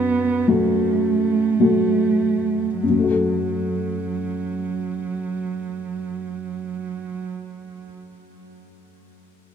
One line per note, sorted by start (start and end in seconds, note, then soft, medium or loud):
0.00 0.44 F#2 soft
0.00 0.49 B3 medium
0.47 1.56 F#3 soft
0.47 2.79 A3 medium
0.47 1.56 A3 soft
0.47 1.56 F#4 soft
1.60 2.78 F#3 soft
1.60 2.78 A3 soft
1.60 2.78 F#4 soft
2.80 7.78 F#2 soft
2.80 7.32 F#3 soft
2.90 7.84 F#3 soft
2.97 7.92 A3 soft
3.04 7.98 F#4 soft
3.11 8.06 A4 soft